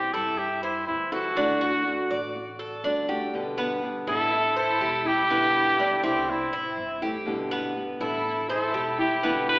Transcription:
Already playing: E3 G3 C4 E4 G4
0.13 G2 E4 A4
0.38 G4, muted nylon-string guitar stroke
0.63 E4 C5
0.87 D2 E3 G3 C4 E4
1.12 E3 G3 C4 E4 F#4 A4
1.36 D3 A3 D4 F#4
1.61 F#4
1.85 D3 A3 D4 F#4
2.10 A1 D5
2.35 muted nylon-string guitar stroke
2.59 A4
2.84 G1 D3 A3 D4 F#4
3.08 A3 D4 F#4 G4
3.33 B2 D3 G3 B3 G4
3.58 B3
3.83 D3 G3 B3 G4
4.07 A1 D3 G3 B3 E4 G4 A4
4.32 muted nylon-string guitar stroke
4.56 E4 A4 C5
4.80 E1 G4
5.05 G3 C4 E4 G4
5.30 B2 D3 G3 B3 E4
5.79 D3 G3 B3 D4 E4
6.03 C2 D3 G3 B3 C4 E4 G4
6.28 C4 E4, muted nylon-string guitar stroke
6.52 A1 E4
6.77 G1
7.01 E3 A3 C4 E4 G4
7.26 B2 D3 G3 B3 G4
7.51 B3
7.76 D3 G3 B3 G4
8.00 A1 D3 G3 B3 E4 G4 A4
8.25 muted nylon-string guitar stroke
8.49 E4 A4 C5
8.74 E1 G4
8.98 G3 C4 E4 G4
9.22 B2 D3 G3 B3 E4
9.48 G4 B4

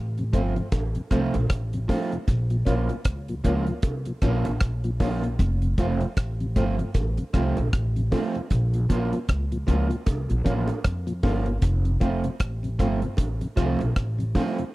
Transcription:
Already playing: A1
0.18 F2 C3, closed hi-hat
0.33 G1 F3 A3 C4 F4, kick, closed hi-hat
0.56 F2 C3, muted clean electric guitar stroke, closed hi-hat
0.72 A1, kick, closed hi-hat, high bongo
0.95 F2 C3, closed hi-hat
1.11 C2 F3 A3 C4 F4, kick, cross-stick, closed hi-hat, high bongo
1.34 A#1, closed hi-hat, high bongo
1.50 A1, kick, cross-stick, closed hi-hat
1.73 F2 C3, closed hi-hat
1.88 F3 A3 C4 F4, kick, open hi-hat, high bongo, low bongo
2.12 F2 C3, closed hi-hat
2.28 A#1, kick, closed hi-hat
2.50 A#2 F3, closed hi-hat
2.65 A#1 F3 A#3 C#4 F4, kick, closed hi-hat
2.89 A#2 F3, closed hi-hat
3.05 C#2, kick, cross-stick, closed hi-hat
3.28 A#2 F3, closed hi-hat
3.44 C#2 F3 A#3 C#4 F4, kick, closed hi-hat
3.67 A#2 F3, muted clean electric guitar stroke, closed hi-hat
3.82 C2, kick, closed hi-hat, high bongo
4.05 A#2 F3, closed hi-hat
4.22 A#1 F3 A#3 C#4 F4, kick, cross-stick, closed hi-hat, high bongo
4.45 A1, closed hi-hat, high bongo
4.61 A#1, kick, cross-stick, closed hi-hat
4.84 A#2 F3, closed hi-hat
5.00 F3 A#3 C#4 F4, kick, open hi-hat, high bongo, low bongo
5.22 A#2 F3, closed hi-hat
5.39 F1, kick, closed hi-hat
5.62 F2 C3, closed hi-hat
5.78 F1 F3 A3 C4 F4, kick, closed hi-hat
6.01 F2 C3, closed hi-hat
6.17 A1, kick, cross-stick, closed hi-hat
6.40 F2 C3, closed hi-hat
6.56 G1 F3 A3 C4 F4, kick, closed hi-hat
6.79 F2 C3, muted clean electric guitar stroke, closed hi-hat
6.94 A1, kick, closed hi-hat, high bongo
7.17 F2 C3, closed hi-hat
7.33 C2 F3 A3 C4 F4, kick, cross-stick, closed hi-hat, high bongo
7.57 A#1, closed hi-hat, high bongo
7.73 A1, kick, cross-stick, closed hi-hat
7.96 F2 C3, closed hi-hat
8.11 F3 A3 C4 F4, kick, open hi-hat, high bongo, low bongo
8.35 F2 C3, closed hi-hat
8.50 A#1, kick, closed hi-hat
8.74 A#2 F3, closed hi-hat
8.89 A#1 F3 A#3 C#4 F4, kick, closed hi-hat
9.13 A#2 F3, closed hi-hat
9.29 C#2, kick, cross-stick, closed hi-hat
9.52 A#2 F3, closed hi-hat
9.67 C#2 F3 A#3 C#4 F4, kick, closed hi-hat
9.90 A#2 F3, muted clean electric guitar stroke, closed hi-hat
10.06 C2, kick, closed hi-hat, high bongo
10.29 A#1 A#2 F3, closed hi-hat
10.44 A1 F3 A#3 C#4 F4, kick, closed hi-hat, high bongo
10.68 closed hi-hat, high bongo
10.84 F2, kick, cross-stick, closed hi-hat
11.07 A#2 F3, closed hi-hat
11.23 G1 F3 A#3 C#4 F4, kick, open hi-hat, high bongo, low bongo
11.46 A#2 F3, closed hi-hat
11.62 F1, kick, closed hi-hat
11.85 F2 C3, closed hi-hat
12.00 F1 F3 A3 C4 F4, kick, closed hi-hat
12.24 F2 C3, closed hi-hat
12.40 A1, kick, cross-stick, closed hi-hat
12.63 F2 C3, closed hi-hat
12.79 G1 F3 A3 C4 F4, kick, closed hi-hat
13.02 F2 C3, muted clean electric guitar stroke, closed hi-hat
13.17 A1, kick, closed hi-hat, high bongo
13.41 F2 C3, closed hi-hat
13.56 C2 F3 A3 C4 F4, kick, cross-stick, closed hi-hat, high bongo
13.79 A#1, closed hi-hat, high bongo
13.96 A1, kick, cross-stick, closed hi-hat
14.18 F2 C3, closed hi-hat
14.35 F3 A3 C4 F4, kick, open hi-hat, high bongo, low bongo
14.58 F2 C3, closed hi-hat

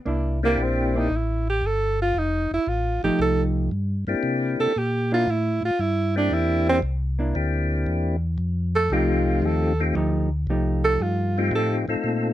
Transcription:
0.05 C2 A#3 D4 E4
0.43 A#3 C4 D4 E4 G4
0.58 A#1
0.62 C4
0.95 A#3 D4 D#4 E4
1.10 A1
1.16 E4
1.50 G4
1.62 G1
1.66 A4
2.02 F4
2.14 F1
2.18 D#4
2.51 F1 E4
2.67 A1 F4
3.03 A1 F3 A3 D#4 G4
3.19 C2 A4
3.71 G2
4.07 G2 A#3 C4 D4 E4 G4
4.23 C3
4.60 C3 A4
4.76 A#2 G4
5.12 A#3 D4 E4 F4
5.27 A2 E4
5.62 A2 F4
5.79 G2 E4
6.16 A#3 C4 D4 E4 G4
6.31 E2 E4
6.69 C4
6.82 C2
7.19 A#3 D4 E4
7.35 D2 A#3 C4 D4 E4 G4
7.86 E2
8.38 F2
8.75 A4
8.90 C2 F3 A3 C4 D#4 F4 G4
9.42 D#2 A4
9.80 A3 C4 D#4 F4 G4
9.95 D2 F3 A3 D#4 G4
10.47 C2 F3 A3 D#4 G4
10.85 A4
11.00 G2 F4
11.38 A3 C4 D#4 F4 G4
11.51 A2 A4
11.88 A2 A3 C4 D#4 F4 A4
12.04 A#2

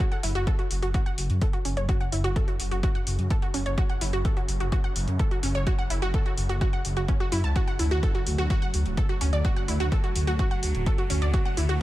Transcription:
0.00 F#2 C#3
0.12 F#5, closed hi-hat
0.23 F#1 E4, open hi-hat
0.35 F#1 F#4, closed hi-hat
0.47 A4, kick, closed hi-hat
0.59 F#4, closed hi-hat
0.71 F#1, open hi-hat
0.82 F#1 F#4, closed hi-hat
0.94 F#4, kick, closed hi-hat
1.06 F#5, closed hi-hat
1.18 F#1, open hi-hat
1.30 F#2, closed hi-hat
1.41 A4, kick, closed hi-hat
1.53 F#4, closed hi-hat
1.65 F#1 C#4, open hi-hat
1.77 F#1 C#5, closed hi-hat
1.89 F#4, kick, closed hi-hat
2.01 F#5, closed hi-hat
2.12 F#1 E4, open hi-hat
2.24 F#1 F#4, closed hi-hat
2.36 A4, kick, closed hi-hat
2.48 F#4, closed hi-hat
2.60 F#1, open hi-hat
2.71 F#1 F#4, closed hi-hat
2.83 F#4, kick, closed hi-hat
2.95 F#5, closed hi-hat
3.07 F#1, open hi-hat
3.19 F#2, closed hi-hat
3.30 A4, kick, closed hi-hat
3.42 F#4, closed hi-hat
3.54 F#1 C#4, open hi-hat
3.66 F#1 C#5, closed hi-hat
3.78 F#4, kick, closed hi-hat
3.89 F#5, closed hi-hat
4.01 F#1 E4, open hi-hat
4.13 F#1 F#4, closed hi-hat
4.25 A4, kick, closed hi-hat
4.37 F#4, closed hi-hat
4.49 F#1, open hi-hat
4.60 F#1 F#4, closed hi-hat
4.72 F#4, kick, closed hi-hat
4.84 F#5, closed hi-hat
4.96 F#1, open hi-hat
5.08 F#2, closed hi-hat
5.19 A4, kick, closed hi-hat
5.31 F#4, closed hi-hat
5.43 F#1 C#4, open hi-hat
5.55 F#1 C#5, closed hi-hat
5.67 F#4, kick, closed hi-hat
5.79 F#5, closed hi-hat
5.90 F#1 E4, open hi-hat
6.02 F#1 F#4, closed hi-hat
6.14 A4, kick, closed hi-hat
6.26 F#4, closed hi-hat
6.37 F#1, open hi-hat
6.49 F#1 F#4, closed hi-hat
6.61 F#4, kick, closed hi-hat
6.73 F#5, closed hi-hat
6.85 F#1, open hi-hat
6.97 F#1 F#4, closed hi-hat
7.08 C#4, kick, closed hi-hat
7.20 F#4, closed hi-hat
7.32 F#2 E4, open hi-hat
7.44 C#2 A5, closed hi-hat
7.56 F#3 A3 F#4, kick, closed hi-hat
7.67 F#5, closed hi-hat
7.79 D2 E4, open hi-hat
7.91 D2 F#4, closed hi-hat
8.03 A4, kick, closed hi-hat
8.15 F#4, closed hi-hat
8.27 D2, open hi-hat
8.38 D2 F#4, closed hi-hat
8.50 F#4, kick, closed hi-hat
8.62 F#5, closed hi-hat
8.74 D2, open hi-hat
8.86 D1, closed hi-hat
8.97 A4, kick, closed hi-hat
9.09 F#4, closed hi-hat
9.21 D2 C#4, open hi-hat
9.33 D2 D5, closed hi-hat
9.45 F#4, kick, closed hi-hat
9.56 F#5, closed hi-hat
9.68 D2 E4, open hi-hat
9.80 D2 F#4, closed hi-hat
9.92 A4, kick, closed hi-hat
10.04 F#4, closed hi-hat
10.15 D2, open hi-hat
10.27 D2 F#4, closed hi-hat
10.39 F#4, kick, closed hi-hat
10.51 F#5, closed hi-hat
10.63 D2, open hi-hat
10.75 D1, closed hi-hat
10.86 A4, kick, closed hi-hat
10.98 F#4, closed hi-hat
11.10 D2 C#4, open hi-hat
11.22 D2 D5, closed hi-hat
11.34 F#4, kick, closed hi-hat
11.45 F#5, closed hi-hat
11.57 D2 E4, open hi-hat
11.69 D2 F#4, closed hi-hat

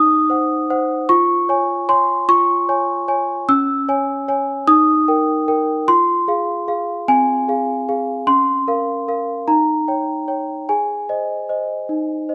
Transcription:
Already playing: D#4 D#6
0.30 C5 F#5
0.70 C5 F#5
1.09 F4 C#6
1.49 C#5 G#5
1.89 C#5 G#5 C6
2.29 F4 C#6
2.69 C#5 G#5
3.08 C#5 G#5
3.49 C#4 E6
3.88 C#5 G#5
4.28 C#5 G#5
4.67 D#4 D#6
5.08 A#4 G5
5.48 A#4 G5
5.88 F4 C6
6.28 G#4 F5
6.68 G#4 F5
7.08 C4 G#5
7.48 G#4 F5
7.89 G#4 F5
8.27 C#4 C6
8.68 A#4 F5
9.08 A#4 F5
9.48 D#4 A#5
9.88 C#5 G5
10.28 C#5 G5
10.69 G#4 G#5
11.09 C5 D#5
11.49 C5 D#5
11.89 D#4
12.29 C5 D#5

